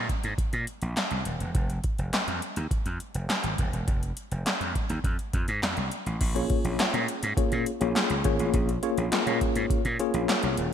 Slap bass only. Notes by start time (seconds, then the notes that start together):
0.24 G#2
0.38 muted slap bass stroke
0.53 A#2
0.82 A#1
1.11 C2
1.26 D#1
1.40 E1
1.55 F1
1.99 F1
2.13 muted slap bass stroke
2.28 F2
2.57 D#2
2.86 F2
3.15 F1
3.44 G#1
3.59 D#1
3.73 E1
3.88 F1
4.31 F1
4.61 F2
4.90 D#2
5.04 F2
5.34 F2
5.48 G#2
5.63 F2
5.77 C2
6.06 A1
6.21 A#1
6.65 A#1
6.79 muted slap bass stroke
6.94 A#2
7.23 G#2
7.37 muted slap bass stroke
7.52 A#2
7.81 A#1
8.10 C#2
8.25 G#1
8.39 A1
8.54 A#1
8.98 A#1
9.27 A#2
9.56 G#2
9.70 muted slap bass stroke
9.85 A#2
10.14 A#1
10.43 C2
10.58 D#1